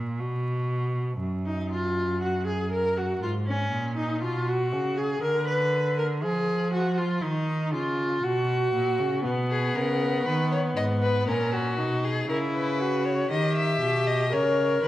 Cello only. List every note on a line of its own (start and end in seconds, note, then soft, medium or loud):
0.00 0.21 A#2 medium
0.20 1.20 B2 medium
1.20 3.18 F#2 medium
3.22 3.71 G#2 medium
3.72 4.24 A#2 medium
4.22 4.74 B2 medium
4.73 5.22 C#3 medium
5.23 6.25 D3 medium
6.23 7.23 F3 medium
7.23 7.75 D#3 medium
7.73 8.23 C#3 medium
8.24 8.73 B2 medium
8.74 9.01 A#2 medium
9.00 9.27 C#3 medium
9.25 9.75 B2 medium
9.76 10.26 C#3 medium
10.26 10.76 D#3 medium
10.77 11.27 G#2 medium
11.28 11.80 A#2 medium
11.78 12.28 B2 medium
12.29 13.29 C#3 medium
13.31 13.81 D#3 medium
13.81 14.34 B2 medium
14.33 14.83 C#3 medium
14.83 14.88 D#3 medium